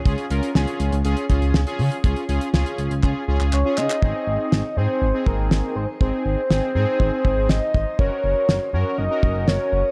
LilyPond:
<<
  \new Staff \with { instrumentName = "Soft synth lead" } { \time 4/4 \key aes \mixolydian \tempo 4 = 121 r1 | r2. des''8 ees''8~ | ees''4. c''4 bes'4 c''8 | c''2. ees''4 |
des''4. des''8 ees''4 des''4 | }
  \new Staff \with { instrumentName = "Analog polysynth" } { \time 4/4 \key aes \mixolydian <des' f' aes'>8 <des' f' bes'>8 <des' f' aes'>8. r16 <des' f' aes'>8 <des' f' aes'>8 r16 <des' f' aes'>8 r16 | <des' f' aes'>8 <des' f' aes'>8 <des' f' aes'>8. r16 <des' f' aes'>8 <des' f' aes'>8 r16 <des' f' aes'>8 r16 | <c' ees' aes'>4~ <c' ees' aes'>16 r16 <c' ees' aes'>8 r16 <c' ees' aes'>4. r16 | <c' ees' aes'>8. r16 <c' ees' aes'>8 <c' ees' aes'>4.~ <c' ees' aes'>16 r8. |
<des' ges' bes'>4~ <des' ges' bes'>16 r16 <des' ges' bes'>8 r16 <des' ges' bes'>4. r16 | }
  \new Staff \with { instrumentName = "Analog synth bass" } { \clef bass \time 4/4 \key aes \mixolydian des,16 r16 des,16 r16 des,16 r16 des,16 des,16 des,16 r16 des,16 des,16 des,16 r16 des16 r16 | des,16 r16 des,16 r16 des,16 r16 des,16 des,16 des,16 r16 des,16 des,16 des,16 r16 des16 r16 | aes,,16 r16 aes,,16 r16 aes,,16 r16 aes,16 r16 aes,,16 r16 aes,,16 aes,,16 aes,,16 r16 aes,,16 r16 | aes,,16 r16 aes,,16 r16 aes,,16 r16 aes,16 r16 aes,,16 r16 aes,,16 aes,,16 aes,,16 r16 aes,,16 r16 |
ges,,16 r16 ges,,16 r16 ges,,16 r16 ges,16 r16 ges,,16 r16 ges,,16 ges,,16 ges,,16 r16 ges,,16 r16 | }
  \new DrumStaff \with { instrumentName = "Drums" } \drummode { \time 4/4 <hh bd>16 hh16 hh16 hh16 sn16 hh16 hh16 hh16 hh16 hh16 <hh bd>16 hh16 sn16 hh16 hho16 hh16 | <hh bd>16 hh16 hh16 hh16 sn16 hh16 hh16 hh16 <hc bd>8. hc16 hc8 hc16 hc16 | bd4 sn4 r8 bd8 sn4 | bd4 sn4 bd8 bd8 sn8 bd8 |
bd4 sn4 r8 bd8 sn4 | }
>>